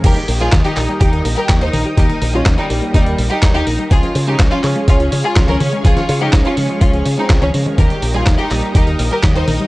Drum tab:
CC |x---------------|----------------|----------------|----------------|
HH |xxoxxxoxxxoxxxo-|xxoxxxoxxxoxxxox|xxoxxxo-xxo-xxox|xxoxxxoxxxoxxxox|
CP |----x-x-----x---|----x-------x---|----x-x-----x---|----x-------x---|
SD |----o-------o---|----o-------o---|----o-------o---|-o--o-------o---|
T1 |-------------oo-|-o--------------|-------------oo-|-o-----------o-o|
BD |o---o---o---o---|o---o---o---o---|o---o---o---o---|o---o---o---o---|

CC |----------------|
HH |xxo-xxoxxxoxxxox|
CP |----x-x-----x---|
SD |----o-------o---|
T1 |-------------oo-|
BD |o---o---o---o---|